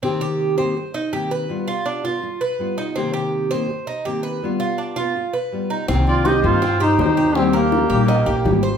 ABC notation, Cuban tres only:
X:1
M:4/4
L:1/8
Q:1/4=164
K:Cm
V:1 name="Cuban tres"
C G2 c2 E G =B- | =B F D F2 B2 E | C G2 c2 E G =B- | =B F D F2 B2 E |
C2 E2 C G2 G- | G B2 G e G2 c |]